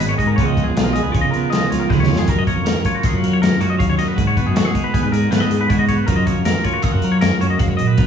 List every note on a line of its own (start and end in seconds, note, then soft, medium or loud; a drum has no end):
0.00 0.13 G#1 medium
0.00 0.36 G#2 medium
0.00 0.18 G#3 medium
0.00 0.36 B3 medium
0.00 0.36 D#4 medium
0.00 0.38 F#4 medium
0.00 snare soft
0.00 closed hi-hat medium
0.09 0.18 C#5 medium
0.18 0.35 G#2 medium
0.18 0.36 G#3 medium
0.18 0.28 D#5 medium
0.18 kick medium
0.18 closed hi-hat medium
0.27 0.37 A#4 medium
0.36 0.62 C#2 medium
0.36 0.57 C#3 medium
0.36 0.57 F3 soft
0.36 1.33 B3 medium
0.36 0.76 F4 medium
0.36 0.45 C#5 medium
0.36 kick loud
0.36 closed hi-hat medium
0.41 0.94 G#4 medium
0.45 0.65 D#5 medium
0.57 1.52 F3 medium
0.57 kick medium
0.57 closed hi-hat medium
0.64 0.74 C#2 medium
0.64 0.84 G#4 medium
0.76 1.00 B1 medium
0.76 1.14 F4 medium
0.76 snare loud
0.76 closed hi-hat medium
0.84 0.94 A#4 medium
0.93 2.26 G#4 medium
0.93 1.03 D#5 medium
0.93 closed hi-hat medium
1.03 1.12 C#2 medium
1.03 1.12 B4 medium
1.12 1.22 C#2 medium
1.12 1.21 C#5 medium
1.12 kick loud
1.12 closed hi-hat medium
1.16 1.71 F4 medium
1.21 1.64 C#3 medium
1.21 1.32 D#5 medium
1.31 1.51 A#4 medium
1.31 closed hi-hat medium
1.36 2.27 B3 medium
1.50 2.07 F3 medium
1.50 1.70 D#5 medium
1.50 snare medium
1.50 closed hi-hat medium
1.70 1.88 C#2 medium
1.70 2.26 F4 medium
1.70 1.80 C#5 medium
1.70 snare soft
1.70 closed hi-hat medium
1.80 1.90 A#4 medium
1.89 2.07 D#2 medium
1.89 2.08 C#3 medium
1.89 1.99 B4 medium
1.89 kick loud
1.89 snare medium
2.00 2.19 C#5 medium
2.00 snare medium
2.08 2.26 F2 medium
2.08 2.25 F3 medium
2.16 2.29 G#4 medium
2.16 snare loud
2.28 2.44 F#2 medium
2.28 3.76 F#2 medium
2.28 2.38 A#4 medium
2.28 2.65 A#4 medium
2.28 kick loud
2.28 closed hi-hat medium
2.38 2.47 D#5 medium
2.47 3.04 A#3 medium
2.47 2.67 C#5 medium
2.47 kick medium
2.47 closed hi-hat medium
2.56 2.73 F2 medium
2.65 3.24 A#4 medium
2.65 2.85 A#4 medium
2.65 snare loud
2.65 closed hi-hat loud
2.85 4.16 F4 medium
2.85 2.95 C#5 medium
2.85 kick medium
2.85 closed hi-hat medium
2.95 3.05 F#4 medium
3.03 3.42 A#3 medium
3.03 3.15 G#4 medium
3.03 kick loud
3.03 closed hi-hat loud
3.13 3.21 F#2 medium
3.13 3.33 F#4 medium
3.23 3.39 F#3 medium
3.23 3.78 A#4 medium
3.23 closed hi-hat medium
3.33 3.41 C#5 medium
3.41 3.50 F#2 medium
3.41 3.97 A#3 medium
3.41 3.60 A#4 medium
3.41 snare loud
3.41 closed hi-hat medium
3.60 3.77 F#2 medium
3.60 4.18 F#3 medium
3.60 3.69 C#5 medium
3.60 closed hi-hat medium
3.70 3.79 D#5 medium
3.78 3.96 D#2 medium
3.78 4.15 F#2 medium
3.78 4.15 C#5 medium
3.78 3.89 F5 medium
3.78 kick loud
3.78 closed hi-hat medium
3.89 3.98 C#5 medium
3.98 4.18 A#3 medium
3.98 4.08 D#5 medium
3.98 snare soft
3.98 closed hi-hat medium
4.08 4.27 B4 medium
4.15 5.67 G#2 medium
4.15 4.34 G#2 medium
4.15 4.56 F#4 medium
4.15 kick medium
4.15 closed hi-hat medium
4.27 4.37 C#5 medium
4.37 4.93 B3 medium
4.37 4.47 B4 medium
4.37 kick medium
4.37 closed hi-hat medium
4.46 4.62 F#2 medium
4.46 4.56 G#4 medium
4.56 4.65 F#4 medium
4.56 5.12 F#4 medium
4.56 snare loud
4.56 closed hi-hat loud
4.65 4.84 G#4 medium
4.75 6.06 D#4 medium
4.75 kick medium
4.75 closed hi-hat medium
4.84 4.94 B4 medium
4.94 5.30 B3 medium
4.94 5.03 G#4 medium
4.94 kick loud
4.94 closed hi-hat medium
5.03 5.11 G#2 loud
5.03 5.12 B4 medium
5.12 5.29 G#2 medium
5.12 5.69 G#4 medium
5.12 5.31 A#4 medium
5.12 closed hi-hat medium
5.31 5.40 G#2 medium
5.31 5.88 B3 medium
5.31 5.40 B4 medium
5.31 snare loud
5.31 closed hi-hat medium
5.40 5.60 D#5 medium
5.50 5.67 G#2 medium
5.50 6.05 G#3 medium
5.50 closed hi-hat medium
5.61 5.69 B4 medium
5.68 6.05 G#2 medium
5.68 5.86 G#2 medium
5.68 6.10 F#4 medium
5.68 5.79 C#5 medium
5.68 kick medium
5.68 closed hi-hat medium
5.79 5.88 D#5 medium
5.88 6.06 B3 medium
5.88 5.98 C#5 medium
5.88 kick medium
5.88 closed hi-hat medium
5.98 6.08 B4 medium
6.06 7.58 F#2 medium
6.06 6.24 F#2 medium
6.06 7.40 F#3 medium
6.06 6.26 A#3 medium
6.06 6.63 F4 medium
6.06 6.17 A#4 medium
6.06 6.45 A#4 medium
6.06 kick loud
6.06 closed hi-hat medium
6.16 6.26 D#5 medium
6.26 6.84 A#3 medium
6.26 6.45 C#5 medium
6.26 kick medium
6.26 closed hi-hat medium
6.37 6.53 F2 medium
6.45 6.64 A#4 medium
6.45 7.04 A#4 medium
6.45 snare loud
6.45 closed hi-hat loud
6.64 7.96 F4 medium
6.64 6.74 C#5 medium
6.64 kick medium
6.64 closed hi-hat medium
6.74 6.82 F#4 medium
6.82 7.22 A#3 medium
6.82 6.92 G#4 medium
6.82 kick loud
6.82 closed hi-hat medium
6.92 7.02 F#2 loud
6.92 7.12 F#4 medium
7.02 7.20 F#3 medium
7.02 7.98 A#4 medium
7.02 closed hi-hat medium
7.12 7.21 C#5 medium
7.21 7.31 F#2 medium
7.21 8.00 A#3 medium
7.21 7.41 A#4 medium
7.21 snare loud
7.21 closed hi-hat medium
7.41 7.58 F#2 medium
7.41 8.07 F#3 medium
7.41 7.50 C#5 medium
7.41 closed hi-hat medium
7.50 7.59 D#5 medium
7.59 7.76 F#2 medium
7.59 7.78 G#2 medium
7.59 7.68 F5 medium
7.59 kick loud
7.59 closed hi-hat medium
7.68 7.76 C#5 medium
7.77 7.98 A#2 medium
7.77 7.87 D#5 medium
7.77 closed hi-hat medium
7.87 8.07 B4 medium
7.97 8.07 B1 medium
7.97 8.07 B2 medium
7.97 8.07 A#4 medium
7.97 kick loud
7.97 closed hi-hat medium